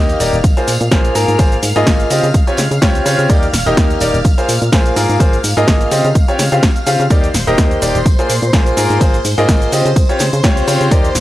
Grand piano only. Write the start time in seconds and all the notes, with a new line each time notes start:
Already playing: A#3 D#4 G4 D#5
0.20 A#3 D#4 G4 D5
0.57 A#3 F4 G#4 C5
0.91 A#3 F4 G#4 C5
1.15 A#3 F4 G#4 A#4
1.39 A#3 F4 G#4 C5
1.76 A#3 F4 G#4 D#5
2.10 C4 F4 G4 D#5
2.47 C4 F4 G4 C#5
2.82 C4 F4 G4 C#5
3.06 C4 F4 G4 C#5
3.29 A#3 D#4 G4 D5
3.66 A#3 D#4 G4 D#5
4.01 A#3 D#4 G4 D5
4.38 A#3 F4 G#4 C5
4.72 A#3 F4 G#4 C5
4.96 A#3 F4 G#4 A#4
5.20 A#3 F4 G#4 C5
5.57 A#3 F4 G#4 D#5
5.91 C4 F4 G4 D#5
6.28 C4 F4 G4 C#5
6.52 C4 F4 G4 F5
6.87 C4 F4 G4 F5
7.10 A#3 D#4 G4 D5
7.47 A#3 D#4 G4 D#5
7.82 A#3 D#4 G4 D5
8.19 A#3 F4 G#4 C5
8.53 A#3 F4 G#4 C5
8.77 A#3 F4 G#4 A#4
9.01 A#3 F4 G#4 C5
9.38 A#3 F4 G#4 D#5
9.72 C4 F4 G4 D#5
10.09 C4 F4 G4 C#5
10.44 C4 F4 G4 C#5
10.67 C4 F4 G4 C#5
10.91 A#3 D#4 G4 D5